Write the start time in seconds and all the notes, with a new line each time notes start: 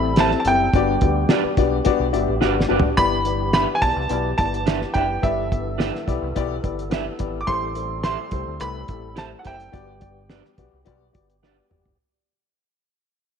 Already playing: A1 G3 C4 A4 B5
0.16 C4 E4 G4 A4 C5 E5 A5, snare, closed hi-hat
0.31 snare
0.40 A5
0.45 F#1 C4 E4 G4 A4 E5 G5, closed hi-hat
0.73 G1 G2 G3 B3 D4 F#4 G4 D5, kick, closed hi-hat
1.01 D2 B3 D4 F#4 G4 D5, kick, closed hi-hat
1.29 B3 D4 F#4 G4 B4 D5, snare, closed hi-hat
1.44 muted fingered electric bass stroke
1.57 B1 B3 D4 F#4 G4 D5, kick, closed hi-hat
1.85 B3 D4 F#4 G4 D5, kick, closed hi-hat
2.00 B1
2.12 G1 B3 D4 F#4 G4 D5 E5, closed hi-hat
2.28 A1
2.40 G1 B3 D4 F#4 G4 B4 D5 F#5, snare
2.60 snare
2.68 F#1 B3 D4 F#4 G4 B4 D5 A5
2.80 floor tom
2.97 G1 G2 E3 B3 E4 G4 D5 B5, kick, closed hi-hat
3.25 B3 E4 G4 D5, closed hi-hat
3.53 B3 D4 E4 G4 B4 D5 E5 B5, snare, closed hi-hat
3.75 G#5
3.82 B1 B3 E4 G4 D5 A5, kick, closed hi-hat
3.96 C2
4.09 B1 B3 E4 G4 D5, closed hi-hat
4.38 G1 B3 E4 G4 D5 A5, kick, closed hi-hat
4.54 closed hi-hat
4.66 B3 D4 E4 G4 B4 D5 E5, snare, closed hi-hat
4.82 snare
4.94 F#1 B3 D4 E4 G4 B4 D5 E5 G5, kick, closed hi-hat
5.22 G1 G2 B3 E4 G4 A4 D5 E5, kick, closed hi-hat
5.51 B3 E4 G4 E5, kick, closed hi-hat
5.78 B3 D4 E4 G4 B4 D5 E5, snare, closed hi-hat
5.95 snare
6.07 B1 B3 E4 G4 D5, kick, closed hi-hat
6.22 C2
6.35 B1 B3 E4 G4 D5, kick, closed hi-hat
6.63 G1 B3 E4 G4 D5, kick, closed hi-hat
6.79 closed hi-hat
6.90 B3 D4 E4 G4 B4 D5 E5, snare, closed hi-hat
7.19 G#1 B3 E4 G4 D5, kick, closed hi-hat
7.41 D6
7.47 A1 A2 G3 A3 C4 E4 G4 C5 C6, kick, closed hi-hat
7.75 A3 E4 G4 C5, closed hi-hat
8.03 A3 E4 G4 C5 E5 C6, snare, closed hi-hat
8.31 C2 A3 E4 G4 C5, kick, closed hi-hat
8.47 D2
8.60 C2 A3 E4 G4 B4 B5, closed hi-hat
8.88 A1 A3 E4 G4 A4, kick, closed hi-hat
9.15 A3 E4 G4 C5 E5 A5, snare, closed hi-hat
9.39 A3 E4 F#5
9.43 F#1 E4 G4 C5 E5 G5, kick, closed hi-hat
9.60 closed hi-hat
9.72 G1 G2 G3 B3 F#4 G4 D5, kick, closed hi-hat
10.00 B3 F#4 G4 D5, kick, closed hi-hat
10.29 B3 D4 F#4 G4 B4 D5, snare, closed hi-hat
10.45 snare
10.58 B1 B3 F#4 G4 D5, kick, closed hi-hat
10.73 C2
10.85 B1 B3 F#4 G4 D5, kick, closed hi-hat
11.12 G1 B3 F#4 G4 D5, kick, closed hi-hat
11.30 closed hi-hat
11.42 B3 D4 F#4 G4 B4 D5, snare
11.70 F#1 B3 F#4 G4 D5, mid tom
11.85 floor tom